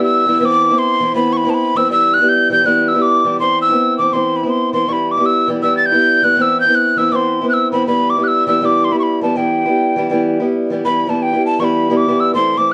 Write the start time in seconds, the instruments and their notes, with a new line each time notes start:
Already playing: steel-string acoustic guitar B3 E4
0.00 steel-string acoustic guitar G3, tin whistle E6
0.26 steel-string acoustic guitar E3 G3 B3 E4
0.40 steel-string acoustic guitar E3 B3 C4 E4, tin whistle E6
0.45 tin whistle D6
0.70 steel-string acoustic guitar B3 C4 E4
0.78 tin whistle C6
1.00 steel-string acoustic guitar E3 B3 C4 E4
1.14 steel-string acoustic guitar E3 B3 C4 E4, tin whistle B5
1.33 tin whistle C#6
1.37 tin whistle B5
1.45 steel-string acoustic guitar B3 C4 E4
1.50 tin whistle A5
1.54 tin whistle B5
1.75 steel-string acoustic guitar E3 B3 C4 E4, tin whistle E6
1.89 steel-string acoustic guitar E3 G3 B3 E4, tin whistle E6
2.14 tin whistle F#6
2.20 steel-string acoustic guitar G3 B3 E4
2.29 tin whistle G6
2.50 steel-string acoustic guitar E3 G3 B3 E4, tin whistle G6
2.64 steel-string acoustic guitar E3 G3 B3 E4, tin whistle F#6
2.88 tin whistle E6
2.94 steel-string acoustic guitar G3 B3 E4
3.02 tin whistle D6
3.24 steel-string acoustic guitar E3 G3 B3 E4
3.39 steel-string acoustic guitar E3 B3 C4 E4, tin whistle C6
3.62 tin whistle E6
3.69 steel-string acoustic guitar B3 C4 E4
3.98 steel-string acoustic guitar E3 B3 C4 E4, tin whistle D6
4.13 steel-string acoustic guitar E3 B3 C4 E4, tin whistle C6
4.36 tin whistle B5
4.43 steel-string acoustic guitar B3 C4 E4
4.50 tin whistle C6
4.73 steel-string acoustic guitar E3 B3 C4 E4, tin whistle C6
4.87 steel-string acoustic guitar E3 G3 B3 E4, tin whistle C#6
4.93 tin whistle B5
5.11 tin whistle D6
5.17 steel-string acoustic guitar G3 B3 E4
5.26 tin whistle E6
5.48 steel-string acoustic guitar E3 G3 B3 E4
5.62 steel-string acoustic guitar E3 G3 B3 E4, tin whistle E6
5.77 tin whistle A6
5.86 tin whistle G6
5.92 steel-string acoustic guitar G3 B3 E4
6.22 steel-string acoustic guitar E3 G3 B3 E4, tin whistle F#6
6.37 steel-string acoustic guitar E3 B3 C4 E4, tin whistle F#6
6.42 tin whistle E6
6.60 tin whistle G6
6.66 steel-string acoustic guitar B3 C4 E4
6.75 tin whistle F#6
6.96 steel-string acoustic guitar E3 B3 C4 E4, tin whistle E6
7.11 steel-string acoustic guitar E3 B3 C4 E4, tin whistle D6
7.16 tin whistle C6
7.41 steel-string acoustic guitar B3 C4 E4
7.49 tin whistle F#6
7.53 tin whistle E6
7.72 steel-string acoustic guitar E3 B3 C4 E4, tin whistle B5
7.86 steel-string acoustic guitar E3 G3 B3 E4, tin whistle B5
8.10 tin whistle D6
8.16 steel-string acoustic guitar G3 B3 E4
8.23 tin whistle F#6
8.28 tin whistle E6
8.47 steel-string acoustic guitar E3 G3 B3 E4, tin whistle E6
8.61 steel-string acoustic guitar E3 G3 B3 E4, tin whistle E6
8.65 tin whistle D6
8.84 tin whistle C6
8.91 steel-string acoustic guitar G3 B3 E4, tin whistle B5
8.99 tin whistle B5 C#6
9.21 steel-string acoustic guitar E3 G3 B3 E4, tin whistle A5
9.35 steel-string acoustic guitar E3 G3 B3 E4, tin whistle G5
9.65 steel-string acoustic guitar G3 B3 E4
9.96 steel-string acoustic guitar E3 G3 B3 E4
10.10 steel-string acoustic guitar E3 G3 B3 E4
10.40 steel-string acoustic guitar G3 B3 E4
10.70 steel-string acoustic guitar E3 G3 B3 E4
10.84 steel-string acoustic guitar E3 G3 B3 E4, tin whistle B5
11.07 steel-string acoustic guitar E3 G3 B3 E4, tin whistle A5
11.22 tin whistle G5
11.33 steel-string acoustic guitar G3 B3 E4
11.46 tin whistle A5
11.59 steel-string acoustic guitar E3 G3 B3 E4, tin whistle C#6
11.64 tin whistle B5
11.90 steel-string acoustic guitar E3 G3 B3 E4
11.97 tin whistle D6
12.08 steel-string acoustic guitar E3 G3 B3 E4
12.20 tin whistle E6
12.34 steel-string acoustic guitar E3 A3 C4 E4, tin whistle C6
12.57 steel-string acoustic guitar E3 A3 C4 E4, tin whistle D6